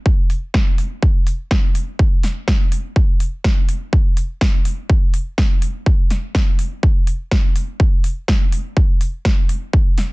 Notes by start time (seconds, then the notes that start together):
0.06 kick
0.30 open hi-hat
0.54 kick, snare
0.78 open hi-hat
1.03 kick
1.27 open hi-hat
1.51 kick, snare
1.75 open hi-hat
1.99 kick
2.23 snare, open hi-hat
2.48 kick, snare
2.72 open hi-hat
2.96 kick
3.20 open hi-hat
3.44 kick, snare
3.69 open hi-hat
3.93 kick
4.17 open hi-hat
4.41 kick, snare
4.65 open hi-hat
4.90 kick
5.14 open hi-hat
5.38 kick, snare
5.62 open hi-hat
5.86 kick
6.10 snare, open hi-hat
6.35 kick, snare
6.59 open hi-hat
6.83 kick
7.07 open hi-hat
7.31 kick, snare
7.56 open hi-hat
7.80 kick
8.04 open hi-hat
8.28 kick, snare
8.52 open hi-hat
8.77 kick
9.01 open hi-hat
9.25 kick, snare
9.49 open hi-hat
9.73 kick
9.98 snare, open hi-hat